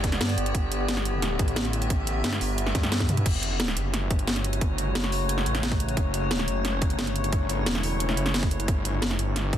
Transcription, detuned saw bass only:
Already playing: G1
0.21 G2
0.38 G1
0.55 G1
1.39 A1
2.24 G2
2.41 G1
2.75 G2
3.26 F#1
3.77 F#1
4.11 G1
4.95 F#1
5.46 A1
5.97 F#1
6.48 F#1
6.82 G1
7.66 E1
8.17 F#1
8.68 G1
9.19 G1
9.53 A1

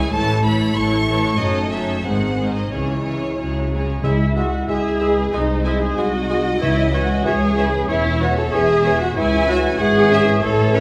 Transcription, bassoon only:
4.04 G#3
4.37 G#3
4.70 G#3
5.01 G#3
5.34 G#3
5.67 G#3
5.98 G#3
6.30 G#3
6.61 E3
6.93 E3
7.25 E3
7.57 E3
7.90 E3
8.22 E3
8.54 E3
8.86 E3
9.17 E3
9.80 E3
10.43 E3

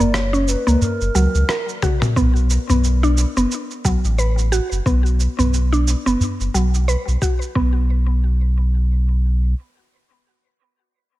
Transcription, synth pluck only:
0.00 A#3
0.33 C#4
0.67 A#3
1.15 F#3
1.49 A#4
1.82 F#4
2.16 B3
2.70 B3
3.03 D4
3.37 B3
3.85 F#3
4.18 B4
4.52 F#4
4.86 B3
5.39 B3
5.72 D4
6.06 B3
6.54 F#3
6.88 B4
7.22 F#4
7.55 B3

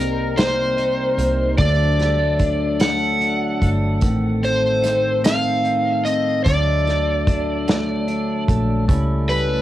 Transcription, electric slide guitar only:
Already playing: A#4
0.37 C5
1.58 D5
2.81 F#5
4.44 C5
5.25 F5
6.05 D#5
6.44 D5
9.29 B4

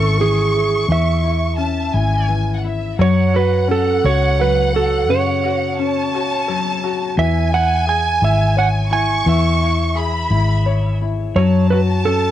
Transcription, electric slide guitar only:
Already playing: A4
0.21 G#4
0.92 E5
3.01 C#5
3.36 B4
3.71 A4
4.06 C#5
4.41 B4
4.76 A4
5.10 C#5
7.19 E5
7.54 F#5
7.89 G#5
8.24 E5
8.59 F#5
8.93 G#5
9.29 E5
11.36 C#5
11.70 B4
12.05 A4

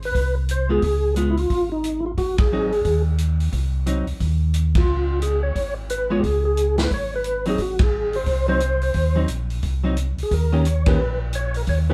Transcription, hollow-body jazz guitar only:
0.69 G#3 B3 F4
1.16 G#3 B3 F4
2.52 F#3 C4 D#4
3.86 F#3 C4 D#4
6.10 G#3 B3 F4
7.46 F#3 C4 D#4
8.48 F#3 C4 D#4
9.15 F#3 C4 D#4
9.84 F#3 C4 D#4
10.52 D#3 A#3 C#4 G4
10.87 D#3 A#3 C#4 G4
11.89 D#3 A#3 C#4 G4

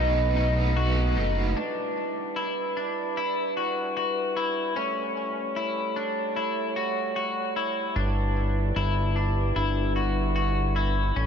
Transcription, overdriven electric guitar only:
Already playing: A3 D#4 F#4
0.00 B4
0.36 A3 D#4 F#4 B4
0.76 B2 F#3 A3 D#4 F#4 B4
1.15 A3 D#4 F#4 B4

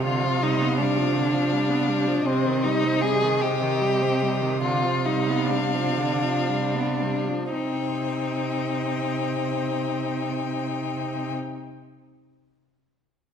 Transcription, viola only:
0.05 D3
0.24 F3
0.42 G3
0.61 B3
0.79 G3
0.98 F3
1.16 D3
1.34 F3
1.52 G3
1.70 B3
1.88 G3
2.07 F3
2.26 C3
2.46 D#3
2.65 G3
2.84 C4
3.03 G3
3.22 D#3
3.42 C3
3.62 D#3
3.82 G3
4.02 C4
4.22 G3
4.41 D#3
4.62 D3
4.84 F3
5.06 G3
5.29 B3
5.51 G3
5.74 F3
5.98 D3
6.22 F3
6.48 G3
6.74 B3
7.02 G3
7.28 F3
7.53 C4

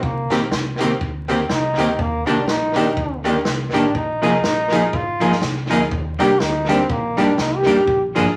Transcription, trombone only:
0.03 A#3
1.51 D#4
2.01 A#3
2.28 D4
2.49 D#4
3.75 D4
3.96 D#4
4.95 F4
6.20 G4
6.41 D#4
6.70 C4
6.90 A#3
7.23 D4
7.40 D#4
7.56 G4

